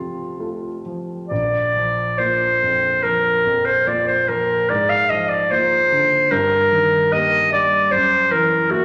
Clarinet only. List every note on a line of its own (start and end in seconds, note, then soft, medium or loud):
0.00 0.83 F4 soft
1.28 2.20 D5 medium
2.18 3.04 C5 medium
3.03 3.67 A#4 medium
3.65 3.89 C5 medium
3.88 4.07 D5 medium
4.07 4.30 C5 medium
4.28 4.71 A#4 medium
4.69 4.91 D5 medium
4.89 5.11 F5 medium
5.10 5.30 D#5 medium
5.29 5.52 D5 medium
5.51 6.33 C5 medium
6.32 7.14 A#4 medium
7.13 7.52 D#5 medium
7.53 7.93 D5 medium
7.92 8.33 C5 medium
8.32 8.73 A#4 medium
8.71 8.85 F#4 medium